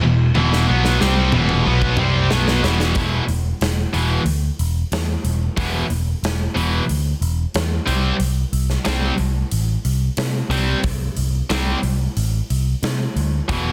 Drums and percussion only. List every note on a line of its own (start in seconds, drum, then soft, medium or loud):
0.35 high tom medium
0.53 snare medium
0.85 snare medium
1.01 snare medium
1.32 mid tom medium
1.49 mid tom medium
1.82 kick medium
1.97 mid tom medium
2.31 snare medium
2.48 snare medium
2.64 snare loud
2.80 snare medium
2.95 kick loud
2.95 open hi-hat medium
3.28 open hi-hat medium
3.61 snare loud
3.61 open hi-hat medium
3.94 open hi-hat medium
4.26 open hi-hat medium
4.59 open hi-hat medium
4.92 snare loud
4.92 open hi-hat medium
5.25 open hi-hat medium
5.57 kick loud
5.57 open hi-hat medium
5.90 open hi-hat medium
6.24 snare loud
6.24 open hi-hat medium
6.57 open hi-hat medium
6.89 open hi-hat medium
7.22 open hi-hat medium
7.54 snare loud
7.54 open hi-hat medium
7.87 open hi-hat medium
8.20 open hi-hat medium
8.53 open hi-hat medium
8.70 snare soft
8.85 snare loud
8.85 open hi-hat medium
9.18 open hi-hat medium
9.51 open hi-hat medium
9.85 open hi-hat medium
10.17 snare loud
10.17 open hi-hat medium
10.51 open hi-hat medium
10.84 kick loud
10.84 open hi-hat medium
11.16 open hi-hat medium
11.50 snare loud
11.50 open hi-hat medium
11.83 open hi-hat medium
12.17 open hi-hat medium
12.50 open hi-hat medium
12.83 snare loud
12.83 open hi-hat medium
13.17 open hi-hat medium
13.49 kick loud
13.49 open hi-hat medium